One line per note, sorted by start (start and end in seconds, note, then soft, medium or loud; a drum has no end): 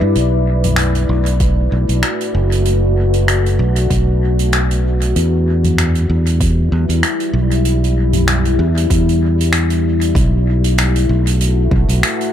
0.00 0.14 G2 medium
0.00 0.15 G3 medium
0.00 2.17 E4 medium
0.00 10.16 B4 medium
0.00 10.15 D5 medium
0.15 1.07 B1 medium
0.15 5.16 A3 medium
0.15 closed hi-hat medium
0.64 closed hi-hat medium
0.64 mid tom medium
0.76 6.98 F#4 medium
0.76 finger snap medium
0.76 closed hi-hat medium
0.95 closed hi-hat soft
1.09 1.69 B1 medium
1.26 closed hi-hat medium
1.40 kick loud
1.40 closed hi-hat medium
1.72 1.87 B1 medium
1.89 2.01 B1 medium
1.89 closed hi-hat medium
2.03 finger snap medium
2.03 closed hi-hat medium
2.21 closed hi-hat soft
2.35 3.57 F#1 medium
2.52 closed hi-hat medium
2.65 closed hi-hat medium
3.14 closed hi-hat soft
3.28 finger snap medium
3.28 closed hi-hat medium
3.46 closed hi-hat soft
3.59 3.87 B1 medium
3.76 closed hi-hat medium
3.90 5.13 B1 medium
3.90 kick medium
3.90 closed hi-hat medium
4.39 closed hi-hat medium
4.52 finger snap medium
4.52 closed hi-hat medium
4.71 closed hi-hat soft
5.01 closed hi-hat soft
5.16 6.07 E2 medium
5.16 10.16 G3 medium
5.16 closed hi-hat medium
5.56 11.29 E4 medium
5.64 closed hi-hat medium
5.64 mid tom medium
5.78 finger snap medium
5.78 closed hi-hat medium
5.95 closed hi-hat soft
6.10 6.69 E2 medium
6.26 closed hi-hat soft
6.40 kick loud
6.40 closed hi-hat medium
6.72 6.87 E2 medium
6.89 7.01 E2 medium
6.89 closed hi-hat medium
7.03 finger snap medium
7.03 closed hi-hat medium
7.20 closed hi-hat soft
7.33 8.56 B1 medium
7.51 closed hi-hat soft
7.65 closed hi-hat medium
7.84 closed hi-hat soft
8.13 closed hi-hat medium
8.13 mid tom medium
8.28 finger snap medium
8.28 closed hi-hat medium
8.45 closed hi-hat soft
8.59 8.87 E2 medium
8.77 closed hi-hat medium
8.90 10.13 E2 medium
8.90 kick loud
8.90 closed hi-hat medium
9.09 closed hi-hat soft
9.41 closed hi-hat medium
9.53 finger snap medium
9.53 closed hi-hat medium
9.70 closed hi-hat soft
10.01 closed hi-hat medium
10.15 11.06 B1 medium
10.15 12.33 A3 medium
10.15 kick loud
10.15 closed hi-hat medium
10.64 closed hi-hat medium
10.78 finger snap medium
10.78 closed hi-hat medium
10.82 12.33 F#4 medium
10.96 closed hi-hat soft
11.09 11.69 B1 medium
11.14 12.33 B4 medium
11.14 12.33 F#5 medium
11.27 closed hi-hat medium
11.41 closed hi-hat medium
11.71 11.87 B1 medium
11.71 kick loud
11.89 12.01 B1 medium
11.89 closed hi-hat medium
12.03 finger snap medium
12.03 closed hi-hat medium
12.21 closed hi-hat soft